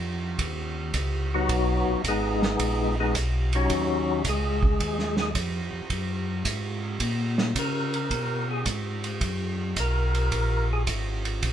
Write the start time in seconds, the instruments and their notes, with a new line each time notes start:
Already playing: tonewheel organ F2
0.39 tonewheel organ D#2, kick, ride
0.94 tonewheel organ C#2, kick, hi-hat pedal, ride
1.34 tonewheel organ F#3 B3 D#4 F#4
1.49 tonewheel organ B1, kick, ride
1.88 tonewheel organ B1
2.04 tonewheel organ G#1, kick, hi-hat pedal, ride
2.08 tonewheel organ G#3 B3 D#4 G#4
2.42 snare
2.59 tonewheel organ A#1, kick, ride
3.00 tonewheel organ G#3 B3 D#4 G#4
3.14 tonewheel organ B1, kick, hi-hat pedal, ride
3.53 tonewheel organ F#3 C#4 D#4 F#4, ride
3.69 tonewheel organ D#2, kick, ride
4.24 tonewheel organ C#2, kick, hi-hat pedal, ride
4.29 tonewheel organ G#3 G#4
4.63 kick
4.80 tonewheel organ D#2, kick, ride
4.99 snare
5.17 tonewheel organ G#4, snare
5.21 tonewheel organ G#3
5.35 tonewheel organ F2, kick, hi-hat pedal, ride
5.73 tonewheel organ F2
5.90 tonewheel organ F#2, kick, ride
6.45 tonewheel organ G#2, kick, hi-hat pedal, ride
7.00 tonewheel organ A#2, kick, ride
7.38 snare
7.55 tonewheel organ C#3 A#4, kick, hi-hat pedal, ride
7.94 ride
8.10 tonewheel organ B2, kick, ride
8.51 tonewheel organ G#4
8.66 tonewheel organ G#2, kick, hi-hat pedal, ride
9.04 ride
9.21 tonewheel organ F#2, kick, ride
9.76 tonewheel organ B1 A#4, kick, hi-hat pedal, ride
10.14 ride
10.32 tonewheel organ A#1, kick, ride
10.73 tonewheel organ G#4
10.87 tonewheel organ G#1, kick, hi-hat pedal, ride
11.25 ride
11.42 tonewheel organ A#1, kick, ride